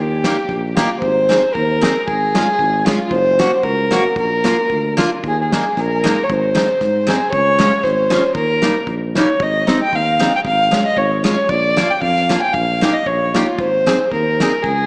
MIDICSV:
0, 0, Header, 1, 5, 480
1, 0, Start_track
1, 0, Key_signature, -4, "major"
1, 0, Tempo, 528169
1, 926, Time_signature, 2, 2, 24, 8
1, 5245, Tempo, 521286
1, 13618, End_track
2, 0, Start_track
2, 0, Title_t, "Fiddle"
2, 0, Program_c, 0, 110
2, 0, Note_on_c, 0, 67, 80
2, 615, Note_off_c, 0, 67, 0
2, 630, Note_on_c, 0, 67, 51
2, 684, Note_on_c, 0, 65, 70
2, 697, Note_off_c, 0, 67, 0
2, 901, Note_off_c, 0, 65, 0
2, 907, Note_on_c, 0, 72, 95
2, 1393, Note_on_c, 0, 70, 84
2, 1407, Note_off_c, 0, 72, 0
2, 1814, Note_off_c, 0, 70, 0
2, 1814, Note_on_c, 0, 70, 69
2, 1883, Note_on_c, 0, 68, 85
2, 1897, Note_off_c, 0, 70, 0
2, 2594, Note_on_c, 0, 65, 78
2, 2608, Note_off_c, 0, 68, 0
2, 2832, Note_on_c, 0, 72, 106
2, 2845, Note_off_c, 0, 65, 0
2, 3229, Note_off_c, 0, 72, 0
2, 3229, Note_on_c, 0, 72, 77
2, 3303, Note_on_c, 0, 70, 90
2, 3317, Note_off_c, 0, 72, 0
2, 3783, Note_off_c, 0, 70, 0
2, 3807, Note_on_c, 0, 70, 86
2, 4506, Note_off_c, 0, 70, 0
2, 4797, Note_on_c, 0, 68, 79
2, 4902, Note_off_c, 0, 68, 0
2, 4919, Note_on_c, 0, 68, 66
2, 5267, Note_on_c, 0, 70, 85
2, 5281, Note_off_c, 0, 68, 0
2, 5674, Note_on_c, 0, 73, 60
2, 5688, Note_off_c, 0, 70, 0
2, 5747, Note_on_c, 0, 72, 76
2, 5761, Note_off_c, 0, 73, 0
2, 6458, Note_on_c, 0, 68, 78
2, 6472, Note_off_c, 0, 72, 0
2, 6661, Note_off_c, 0, 68, 0
2, 6667, Note_on_c, 0, 73, 113
2, 7141, Note_on_c, 0, 72, 93
2, 7155, Note_off_c, 0, 73, 0
2, 7608, Note_off_c, 0, 72, 0
2, 7614, Note_on_c, 0, 70, 91
2, 8065, Note_off_c, 0, 70, 0
2, 8373, Note_on_c, 0, 73, 71
2, 8610, Note_on_c, 0, 75, 85
2, 8624, Note_off_c, 0, 73, 0
2, 8973, Note_off_c, 0, 75, 0
2, 8982, Note_on_c, 0, 79, 87
2, 9096, Note_on_c, 0, 77, 82
2, 9110, Note_off_c, 0, 79, 0
2, 9452, Note_off_c, 0, 77, 0
2, 9467, Note_on_c, 0, 79, 90
2, 9510, Note_off_c, 0, 79, 0
2, 9570, Note_on_c, 0, 77, 90
2, 9901, Note_off_c, 0, 77, 0
2, 9926, Note_on_c, 0, 75, 90
2, 10037, Note_on_c, 0, 73, 80
2, 10050, Note_off_c, 0, 75, 0
2, 10279, Note_off_c, 0, 73, 0
2, 10284, Note_on_c, 0, 73, 83
2, 10514, Note_on_c, 0, 74, 94
2, 10528, Note_off_c, 0, 73, 0
2, 10894, Note_on_c, 0, 79, 86
2, 10908, Note_off_c, 0, 74, 0
2, 10995, Note_off_c, 0, 79, 0
2, 11003, Note_on_c, 0, 77, 82
2, 11313, Note_off_c, 0, 77, 0
2, 11346, Note_on_c, 0, 80, 55
2, 11367, Note_on_c, 0, 79, 84
2, 11381, Note_off_c, 0, 80, 0
2, 11469, Note_on_c, 0, 77, 87
2, 11483, Note_off_c, 0, 79, 0
2, 11839, Note_on_c, 0, 75, 87
2, 11852, Note_off_c, 0, 77, 0
2, 11962, Note_on_c, 0, 73, 82
2, 11976, Note_off_c, 0, 75, 0
2, 12223, Note_on_c, 0, 65, 72
2, 12237, Note_off_c, 0, 73, 0
2, 12453, Note_on_c, 0, 72, 89
2, 12467, Note_off_c, 0, 65, 0
2, 12931, Note_off_c, 0, 72, 0
2, 12936, Note_on_c, 0, 70, 81
2, 13401, Note_on_c, 0, 68, 97
2, 13415, Note_off_c, 0, 70, 0
2, 13618, Note_off_c, 0, 68, 0
2, 13618, End_track
3, 0, Start_track
3, 0, Title_t, "Steel-string acoustic guitar"
3, 0, Program_c, 1, 25
3, 222, Note_on_c, 1, 58, 64
3, 228, Note_on_c, 1, 63, 50
3, 234, Note_on_c, 1, 67, 59
3, 322, Note_off_c, 1, 58, 0
3, 322, Note_off_c, 1, 63, 0
3, 327, Note_off_c, 1, 67, 0
3, 696, Note_on_c, 1, 58, 68
3, 703, Note_on_c, 1, 63, 61
3, 714, Note_on_c, 1, 67, 74
3, 800, Note_off_c, 1, 58, 0
3, 803, Note_off_c, 1, 63, 0
3, 809, Note_off_c, 1, 67, 0
3, 1170, Note_on_c, 1, 60, 47
3, 1178, Note_on_c, 1, 63, 51
3, 1184, Note_on_c, 1, 68, 60
3, 1280, Note_off_c, 1, 60, 0
3, 1284, Note_off_c, 1, 63, 0
3, 1287, Note_off_c, 1, 68, 0
3, 1648, Note_on_c, 1, 60, 62
3, 1651, Note_on_c, 1, 63, 46
3, 1658, Note_on_c, 1, 68, 68
3, 1758, Note_off_c, 1, 63, 0
3, 1759, Note_off_c, 1, 60, 0
3, 1763, Note_off_c, 1, 68, 0
3, 2133, Note_on_c, 1, 56, 60
3, 2138, Note_on_c, 1, 61, 47
3, 2142, Note_on_c, 1, 65, 62
3, 2237, Note_off_c, 1, 61, 0
3, 2238, Note_off_c, 1, 56, 0
3, 2241, Note_off_c, 1, 65, 0
3, 2599, Note_on_c, 1, 56, 62
3, 2607, Note_on_c, 1, 61, 60
3, 2614, Note_on_c, 1, 65, 62
3, 2705, Note_off_c, 1, 56, 0
3, 2710, Note_off_c, 1, 61, 0
3, 2711, Note_off_c, 1, 65, 0
3, 3080, Note_on_c, 1, 58, 56
3, 3085, Note_on_c, 1, 61, 50
3, 3085, Note_on_c, 1, 66, 71
3, 3182, Note_off_c, 1, 58, 0
3, 3183, Note_off_c, 1, 66, 0
3, 3185, Note_off_c, 1, 61, 0
3, 3550, Note_on_c, 1, 58, 58
3, 3559, Note_on_c, 1, 61, 47
3, 3560, Note_on_c, 1, 66, 70
3, 3657, Note_off_c, 1, 58, 0
3, 3659, Note_off_c, 1, 61, 0
3, 3662, Note_off_c, 1, 66, 0
3, 4034, Note_on_c, 1, 58, 52
3, 4038, Note_on_c, 1, 62, 52
3, 4045, Note_on_c, 1, 65, 51
3, 4139, Note_off_c, 1, 58, 0
3, 4141, Note_off_c, 1, 62, 0
3, 4145, Note_off_c, 1, 65, 0
3, 4516, Note_on_c, 1, 58, 70
3, 4522, Note_on_c, 1, 62, 57
3, 4527, Note_on_c, 1, 65, 72
3, 4626, Note_off_c, 1, 58, 0
3, 4629, Note_off_c, 1, 62, 0
3, 4630, Note_off_c, 1, 65, 0
3, 5020, Note_on_c, 1, 56, 54
3, 5028, Note_on_c, 1, 63, 56
3, 5029, Note_on_c, 1, 58, 49
3, 5122, Note_off_c, 1, 56, 0
3, 5123, Note_off_c, 1, 63, 0
3, 5126, Note_off_c, 1, 58, 0
3, 5489, Note_on_c, 1, 56, 66
3, 5495, Note_on_c, 1, 58, 53
3, 5503, Note_on_c, 1, 63, 59
3, 5597, Note_off_c, 1, 56, 0
3, 5600, Note_off_c, 1, 58, 0
3, 5604, Note_off_c, 1, 63, 0
3, 5959, Note_on_c, 1, 56, 58
3, 5964, Note_on_c, 1, 60, 46
3, 5965, Note_on_c, 1, 63, 61
3, 6070, Note_off_c, 1, 56, 0
3, 6071, Note_off_c, 1, 60, 0
3, 6073, Note_off_c, 1, 63, 0
3, 6437, Note_on_c, 1, 56, 60
3, 6443, Note_on_c, 1, 60, 55
3, 6452, Note_on_c, 1, 63, 66
3, 6545, Note_off_c, 1, 56, 0
3, 6548, Note_off_c, 1, 60, 0
3, 6552, Note_off_c, 1, 63, 0
3, 6915, Note_on_c, 1, 56, 61
3, 6922, Note_on_c, 1, 61, 55
3, 6928, Note_on_c, 1, 65, 59
3, 7020, Note_off_c, 1, 56, 0
3, 7023, Note_off_c, 1, 61, 0
3, 7026, Note_off_c, 1, 65, 0
3, 7391, Note_on_c, 1, 56, 69
3, 7394, Note_on_c, 1, 61, 48
3, 7398, Note_on_c, 1, 65, 71
3, 7494, Note_off_c, 1, 61, 0
3, 7496, Note_off_c, 1, 56, 0
3, 7499, Note_off_c, 1, 65, 0
3, 7865, Note_on_c, 1, 55, 43
3, 7873, Note_on_c, 1, 58, 40
3, 7873, Note_on_c, 1, 63, 60
3, 7974, Note_off_c, 1, 55, 0
3, 7974, Note_off_c, 1, 58, 0
3, 7977, Note_off_c, 1, 63, 0
3, 8361, Note_on_c, 1, 55, 51
3, 8371, Note_on_c, 1, 58, 52
3, 8378, Note_on_c, 1, 63, 67
3, 8465, Note_off_c, 1, 55, 0
3, 8467, Note_off_c, 1, 58, 0
3, 8473, Note_off_c, 1, 63, 0
3, 8835, Note_on_c, 1, 63, 61
3, 8839, Note_on_c, 1, 60, 47
3, 8844, Note_on_c, 1, 56, 53
3, 8944, Note_off_c, 1, 56, 0
3, 8945, Note_off_c, 1, 60, 0
3, 8946, Note_off_c, 1, 63, 0
3, 9317, Note_on_c, 1, 56, 56
3, 9321, Note_on_c, 1, 60, 54
3, 9325, Note_on_c, 1, 63, 66
3, 9423, Note_off_c, 1, 56, 0
3, 9425, Note_off_c, 1, 60, 0
3, 9427, Note_off_c, 1, 63, 0
3, 9794, Note_on_c, 1, 56, 57
3, 9796, Note_on_c, 1, 61, 41
3, 9799, Note_on_c, 1, 65, 59
3, 9899, Note_off_c, 1, 61, 0
3, 9900, Note_off_c, 1, 56, 0
3, 9901, Note_off_c, 1, 65, 0
3, 10279, Note_on_c, 1, 56, 66
3, 10292, Note_on_c, 1, 61, 55
3, 10294, Note_on_c, 1, 65, 64
3, 10380, Note_off_c, 1, 56, 0
3, 10386, Note_off_c, 1, 65, 0
3, 10387, Note_off_c, 1, 61, 0
3, 10764, Note_on_c, 1, 58, 55
3, 10772, Note_on_c, 1, 62, 49
3, 10777, Note_on_c, 1, 65, 70
3, 10863, Note_off_c, 1, 58, 0
3, 10867, Note_off_c, 1, 62, 0
3, 10869, Note_off_c, 1, 65, 0
3, 11249, Note_on_c, 1, 58, 55
3, 11256, Note_on_c, 1, 65, 68
3, 11258, Note_on_c, 1, 62, 51
3, 11347, Note_off_c, 1, 58, 0
3, 11349, Note_off_c, 1, 62, 0
3, 11350, Note_off_c, 1, 65, 0
3, 11729, Note_on_c, 1, 58, 55
3, 11738, Note_on_c, 1, 63, 53
3, 11747, Note_on_c, 1, 67, 68
3, 11828, Note_off_c, 1, 58, 0
3, 11832, Note_off_c, 1, 63, 0
3, 11837, Note_off_c, 1, 67, 0
3, 12218, Note_on_c, 1, 58, 51
3, 12224, Note_on_c, 1, 63, 47
3, 12231, Note_on_c, 1, 67, 69
3, 12315, Note_off_c, 1, 58, 0
3, 12318, Note_off_c, 1, 63, 0
3, 12322, Note_off_c, 1, 67, 0
3, 12697, Note_on_c, 1, 60, 55
3, 12702, Note_on_c, 1, 63, 37
3, 12702, Note_on_c, 1, 68, 57
3, 12798, Note_off_c, 1, 60, 0
3, 12799, Note_off_c, 1, 63, 0
3, 12800, Note_off_c, 1, 68, 0
3, 13193, Note_on_c, 1, 60, 50
3, 13199, Note_on_c, 1, 63, 55
3, 13209, Note_on_c, 1, 68, 59
3, 13288, Note_off_c, 1, 60, 0
3, 13292, Note_off_c, 1, 63, 0
3, 13296, Note_off_c, 1, 68, 0
3, 13618, End_track
4, 0, Start_track
4, 0, Title_t, "Tuba"
4, 0, Program_c, 2, 58
4, 0, Note_on_c, 2, 39, 87
4, 275, Note_off_c, 2, 39, 0
4, 443, Note_on_c, 2, 34, 79
4, 757, Note_off_c, 2, 34, 0
4, 923, Note_on_c, 2, 32, 85
4, 1240, Note_off_c, 2, 32, 0
4, 1408, Note_on_c, 2, 39, 85
4, 1720, Note_off_c, 2, 39, 0
4, 1885, Note_on_c, 2, 32, 77
4, 2193, Note_off_c, 2, 32, 0
4, 2353, Note_on_c, 2, 32, 91
4, 2662, Note_off_c, 2, 32, 0
4, 2822, Note_on_c, 2, 30, 91
4, 3134, Note_off_c, 2, 30, 0
4, 3302, Note_on_c, 2, 37, 84
4, 3614, Note_off_c, 2, 37, 0
4, 3778, Note_on_c, 2, 34, 73
4, 4094, Note_off_c, 2, 34, 0
4, 4270, Note_on_c, 2, 38, 78
4, 4588, Note_off_c, 2, 38, 0
4, 4757, Note_on_c, 2, 39, 82
4, 5073, Note_off_c, 2, 39, 0
4, 5243, Note_on_c, 2, 34, 84
4, 5556, Note_off_c, 2, 34, 0
4, 5726, Note_on_c, 2, 32, 88
4, 6035, Note_off_c, 2, 32, 0
4, 6201, Note_on_c, 2, 44, 74
4, 6508, Note_off_c, 2, 44, 0
4, 6675, Note_on_c, 2, 37, 81
4, 6981, Note_off_c, 2, 37, 0
4, 7149, Note_on_c, 2, 32, 85
4, 7457, Note_off_c, 2, 32, 0
4, 7619, Note_on_c, 2, 39, 72
4, 7933, Note_off_c, 2, 39, 0
4, 8095, Note_on_c, 2, 34, 77
4, 8414, Note_off_c, 2, 34, 0
4, 8588, Note_on_c, 2, 32, 75
4, 8903, Note_off_c, 2, 32, 0
4, 9072, Note_on_c, 2, 39, 76
4, 9382, Note_off_c, 2, 39, 0
4, 9548, Note_on_c, 2, 32, 76
4, 9858, Note_off_c, 2, 32, 0
4, 10029, Note_on_c, 2, 32, 89
4, 10339, Note_off_c, 2, 32, 0
4, 10509, Note_on_c, 2, 34, 90
4, 10820, Note_off_c, 2, 34, 0
4, 10995, Note_on_c, 2, 41, 94
4, 11304, Note_off_c, 2, 41, 0
4, 11476, Note_on_c, 2, 34, 87
4, 11787, Note_off_c, 2, 34, 0
4, 11961, Note_on_c, 2, 34, 71
4, 12273, Note_off_c, 2, 34, 0
4, 12440, Note_on_c, 2, 32, 63
4, 12755, Note_off_c, 2, 32, 0
4, 12928, Note_on_c, 2, 39, 77
4, 13241, Note_off_c, 2, 39, 0
4, 13404, Note_on_c, 2, 37, 80
4, 13618, Note_off_c, 2, 37, 0
4, 13618, End_track
5, 0, Start_track
5, 0, Title_t, "Drums"
5, 219, Note_on_c, 9, 38, 74
5, 310, Note_off_c, 9, 38, 0
5, 444, Note_on_c, 9, 36, 47
5, 534, Note_off_c, 9, 36, 0
5, 701, Note_on_c, 9, 38, 83
5, 792, Note_off_c, 9, 38, 0
5, 926, Note_on_c, 9, 36, 58
5, 1017, Note_off_c, 9, 36, 0
5, 1186, Note_on_c, 9, 38, 70
5, 1277, Note_off_c, 9, 38, 0
5, 1409, Note_on_c, 9, 36, 49
5, 1500, Note_off_c, 9, 36, 0
5, 1666, Note_on_c, 9, 38, 80
5, 1756, Note_off_c, 9, 38, 0
5, 1887, Note_on_c, 9, 36, 67
5, 1978, Note_off_c, 9, 36, 0
5, 2138, Note_on_c, 9, 38, 79
5, 2229, Note_off_c, 9, 38, 0
5, 2354, Note_on_c, 9, 36, 43
5, 2445, Note_off_c, 9, 36, 0
5, 2609, Note_on_c, 9, 38, 86
5, 2699, Note_off_c, 9, 38, 0
5, 2825, Note_on_c, 9, 36, 68
5, 2916, Note_off_c, 9, 36, 0
5, 3086, Note_on_c, 9, 38, 83
5, 3177, Note_off_c, 9, 38, 0
5, 3302, Note_on_c, 9, 36, 49
5, 3393, Note_off_c, 9, 36, 0
5, 3558, Note_on_c, 9, 38, 77
5, 3648, Note_off_c, 9, 38, 0
5, 3781, Note_on_c, 9, 36, 67
5, 3872, Note_off_c, 9, 36, 0
5, 4042, Note_on_c, 9, 38, 77
5, 4132, Note_off_c, 9, 38, 0
5, 4269, Note_on_c, 9, 36, 44
5, 4360, Note_off_c, 9, 36, 0
5, 4532, Note_on_c, 9, 38, 77
5, 4623, Note_off_c, 9, 38, 0
5, 4759, Note_on_c, 9, 36, 61
5, 4850, Note_off_c, 9, 36, 0
5, 5020, Note_on_c, 9, 38, 83
5, 5111, Note_off_c, 9, 38, 0
5, 5245, Note_on_c, 9, 36, 40
5, 5245, Note_on_c, 9, 38, 17
5, 5337, Note_off_c, 9, 36, 0
5, 5337, Note_off_c, 9, 38, 0
5, 5507, Note_on_c, 9, 38, 75
5, 5599, Note_off_c, 9, 38, 0
5, 5728, Note_on_c, 9, 36, 72
5, 5820, Note_off_c, 9, 36, 0
5, 5976, Note_on_c, 9, 38, 77
5, 6068, Note_off_c, 9, 38, 0
5, 6194, Note_on_c, 9, 38, 19
5, 6202, Note_on_c, 9, 36, 52
5, 6286, Note_off_c, 9, 38, 0
5, 6294, Note_off_c, 9, 36, 0
5, 6455, Note_on_c, 9, 38, 77
5, 6547, Note_off_c, 9, 38, 0
5, 6676, Note_on_c, 9, 36, 84
5, 6768, Note_off_c, 9, 36, 0
5, 6926, Note_on_c, 9, 38, 91
5, 7019, Note_off_c, 9, 38, 0
5, 7147, Note_on_c, 9, 36, 43
5, 7148, Note_on_c, 9, 38, 19
5, 7239, Note_off_c, 9, 36, 0
5, 7240, Note_off_c, 9, 38, 0
5, 7401, Note_on_c, 9, 38, 79
5, 7493, Note_off_c, 9, 38, 0
5, 7618, Note_on_c, 9, 36, 71
5, 7710, Note_off_c, 9, 36, 0
5, 7871, Note_on_c, 9, 38, 84
5, 7963, Note_off_c, 9, 38, 0
5, 8098, Note_on_c, 9, 36, 53
5, 8190, Note_off_c, 9, 36, 0
5, 8359, Note_on_c, 9, 38, 74
5, 8451, Note_off_c, 9, 38, 0
5, 8586, Note_on_c, 9, 36, 74
5, 8678, Note_off_c, 9, 36, 0
5, 8843, Note_on_c, 9, 38, 77
5, 8935, Note_off_c, 9, 38, 0
5, 9073, Note_on_c, 9, 36, 46
5, 9165, Note_off_c, 9, 36, 0
5, 9334, Note_on_c, 9, 38, 78
5, 9426, Note_off_c, 9, 38, 0
5, 9550, Note_on_c, 9, 36, 64
5, 9642, Note_off_c, 9, 36, 0
5, 9810, Note_on_c, 9, 38, 81
5, 9902, Note_off_c, 9, 38, 0
5, 10029, Note_on_c, 9, 36, 48
5, 10121, Note_off_c, 9, 36, 0
5, 10289, Note_on_c, 9, 38, 83
5, 10381, Note_off_c, 9, 38, 0
5, 10512, Note_on_c, 9, 36, 74
5, 10604, Note_off_c, 9, 36, 0
5, 10771, Note_on_c, 9, 38, 84
5, 10863, Note_off_c, 9, 38, 0
5, 10995, Note_on_c, 9, 36, 46
5, 11087, Note_off_c, 9, 36, 0
5, 11129, Note_on_c, 9, 38, 21
5, 11221, Note_off_c, 9, 38, 0
5, 11256, Note_on_c, 9, 38, 73
5, 11348, Note_off_c, 9, 38, 0
5, 11477, Note_on_c, 9, 36, 67
5, 11569, Note_off_c, 9, 36, 0
5, 11738, Note_on_c, 9, 38, 76
5, 11830, Note_off_c, 9, 38, 0
5, 11959, Note_on_c, 9, 36, 43
5, 12051, Note_off_c, 9, 36, 0
5, 12221, Note_on_c, 9, 38, 78
5, 12313, Note_off_c, 9, 38, 0
5, 12440, Note_on_c, 9, 36, 72
5, 12532, Note_off_c, 9, 36, 0
5, 12704, Note_on_c, 9, 38, 76
5, 12796, Note_off_c, 9, 38, 0
5, 12928, Note_on_c, 9, 36, 47
5, 13020, Note_off_c, 9, 36, 0
5, 13192, Note_on_c, 9, 38, 84
5, 13284, Note_off_c, 9, 38, 0
5, 13410, Note_on_c, 9, 36, 73
5, 13502, Note_off_c, 9, 36, 0
5, 13618, End_track
0, 0, End_of_file